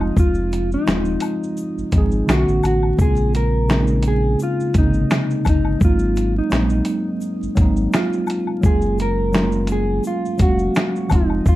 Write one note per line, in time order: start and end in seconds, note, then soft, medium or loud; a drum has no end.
0.00 0.12 F1 loud
0.00 0.68 F3 medium
0.00 0.69 G#3 medium
0.00 0.70 C4 medium
0.00 0.19 D#4 medium
0.00 0.71 D#4 medium
0.00 0.72 F4 medium
0.00 high woodblock medium
0.17 0.77 F1 loud
0.17 0.69 F4 medium
0.17 kick loud
0.17 shaker medium
0.35 shaker soft
0.52 closed hi-hat medium
0.52 shaker soft
0.72 2.34 D#4 medium
0.72 shaker soft
0.86 1.17 D#1 loud
0.86 1.75 F3 medium
0.86 1.75 G#3 medium
0.86 1.76 C4 medium
0.86 finger snap medium
0.86 snare loud
0.86 shaker medium
0.89 1.77 D#4 medium
0.89 1.78 F4 medium
0.89 shaker medium
1.05 shaker soft
1.20 closed hi-hat medium
1.20 high woodblock medium
1.20 shaker medium
1.22 shaker soft
1.44 shaker medium
1.57 shaker medium
1.78 1.84 G#1 soft
1.78 shaker soft
1.91 2.23 G#1 loud
1.91 2.27 F3 medium
1.91 2.28 G#3 medium
1.91 2.29 C4 medium
1.91 kick medium
1.91 closed hi-hat medium
1.91 shaker medium
1.96 2.30 D#4 medium
1.96 2.31 G#4 medium
2.11 shaker soft
2.26 2.45 B1 loud
2.26 2.86 D3 medium
2.26 2.87 A3 medium
2.26 2.88 B3 medium
2.26 finger snap medium
2.26 snare loud
2.26 shaker medium
2.31 2.89 C#4 medium
2.31 2.38 F4 medium
2.31 2.63 F#4 medium
2.39 2.93 F#4 medium
2.48 2.61 A1 medium
2.48 shaker soft
2.63 2.94 A1 medium
2.63 closed hi-hat medium
2.63 high woodblock medium
2.63 shaker medium
2.65 2.98 F#4 medium
2.65 shaker soft
2.83 high woodblock medium
2.97 4.36 A#1 loud
2.97 3.57 C#3 medium
2.97 3.58 G#3 medium
2.97 3.59 A#3 medium
2.97 kick loud
2.97 shaker medium
3.02 3.60 C4 medium
3.02 3.60 F4 medium
3.02 3.36 G#4 loud
3.16 shaker soft
3.34 4.07 A#4 medium
3.34 closed hi-hat medium
3.34 shaker soft
3.67 4.57 C#3 medium
3.67 4.57 G#3 medium
3.67 4.58 A#3 medium
3.67 finger snap medium
3.67 snare loud
3.67 shaker medium
3.72 4.59 C4 medium
3.72 3.79 C#4 medium
3.72 shaker medium
3.80 4.63 D#4 medium
3.87 shaker medium
4.03 closed hi-hat medium
4.03 shaker medium
4.04 4.39 G#4 medium
4.04 shaker soft
4.39 shaker medium
4.43 4.78 F4 medium
4.60 shaker soft
4.73 5.05 G#1 medium
4.73 4.82 C3 medium
4.73 5.63 G#3 medium
4.73 5.64 A#3 medium
4.73 kick medium
4.73 closed hi-hat medium
4.73 shaker soft
4.73 shaker medium
4.78 5.66 C#3 medium
4.78 5.65 C4 medium
4.78 5.48 D#4 medium
4.78 5.66 D#4 medium
4.94 shaker soft
5.11 finger snap medium
5.11 snare loud
5.11 shaker medium
5.31 shaker soft
5.45 5.76 G1 medium
5.45 kick medium
5.45 closed hi-hat medium
5.45 high woodblock medium
5.45 shaker medium
5.47 5.84 D#4 medium
5.47 shaker soft
5.65 high woodblock medium
5.79 6.41 G#1 loud
5.79 6.39 F#3 medium
5.79 6.40 G#3 medium
5.79 6.41 A#3 medium
5.79 kick loud
5.79 shaker medium
5.83 5.90 B3 medium
5.83 6.42 D#4 medium
5.83 6.38 F4 medium
5.90 6.45 C4 medium
5.99 shaker medium
6.16 closed hi-hat medium
6.16 shaker soft
6.38 7.95 D#4 medium
6.50 6.82 A#1 medium
6.50 7.39 F#3 medium
6.50 7.40 G#3 medium
6.50 7.41 A#3 medium
6.50 finger snap medium
6.50 snare loud
6.50 shaker medium
6.54 7.41 C4 medium
6.54 7.42 D#4 medium
6.54 shaker medium
6.70 shaker soft
6.85 closed hi-hat medium
6.85 shaker medium
6.85 shaker soft
7.21 shaker medium
7.42 7.49 G#1 soft
7.42 shaker soft
7.55 7.88 G#1 loud
7.55 8.45 F#3 medium
7.55 8.45 G#3 medium
7.55 8.46 A#3 medium
7.55 kick medium
7.55 closed hi-hat medium
7.55 shaker medium
7.60 8.47 C4 medium
7.60 8.48 D#4 medium
7.76 shaker soft
7.93 8.67 F4 medium
7.93 finger snap medium
7.93 snare loud
7.93 shaker medium
8.13 shaker soft
8.27 closed hi-hat medium
8.27 high woodblock medium
8.27 shaker medium
8.30 shaker soft
8.47 high woodblock medium
8.61 10.01 F#1 loud
8.61 9.22 F#3 medium
8.61 9.22 G#3 medium
8.61 9.23 A#3 medium
8.61 kick loud
8.61 shaker medium
8.66 9.24 C#4 medium
8.66 9.25 F4 medium
8.66 9.01 G#4 medium
8.82 shaker medium
8.98 9.72 A#4 medium
8.98 closed hi-hat medium
8.98 shaker soft
9.32 10.21 F#3 medium
9.32 10.22 G#3 medium
9.32 9.42 A3 medium
9.32 finger snap medium
9.32 snare loud
9.32 shaker medium
9.36 10.24 C#4 medium
9.36 10.24 F4 medium
9.36 shaker medium
9.42 10.26 A#3 medium
9.52 shaker soft
9.67 closed hi-hat medium
9.67 shaker medium
9.67 shaker soft
9.72 10.07 G#4 medium
10.04 10.42 F4 medium
10.04 shaker medium
10.25 shaker soft
10.37 10.70 F1 loud
10.37 11.09 F#3 medium
10.37 11.09 G#3 medium
10.37 11.11 A#3 medium
10.37 kick medium
10.37 closed hi-hat medium
10.37 shaker soft
10.37 shaker medium
10.42 11.12 C#4 medium
10.42 11.14 F#4 medium
10.42 11.12 F5 medium
10.59 shaker soft
10.75 finger snap medium
10.75 snare loud
10.75 shaker medium
10.96 shaker soft
11.09 11.41 F1 medium
11.09 11.56 F3 medium
11.09 11.56 G#3 medium
11.09 11.56 C4 medium
11.09 kick medium
11.09 closed hi-hat medium
11.09 high woodblock medium
11.09 shaker medium
11.12 11.48 D#4 medium
11.12 11.56 D#4 medium
11.12 11.56 F4 medium
11.12 shaker soft
11.30 high woodblock medium
11.46 11.56 F1 loud
11.46 11.56 F4 medium
11.46 kick loud
11.46 shaker medium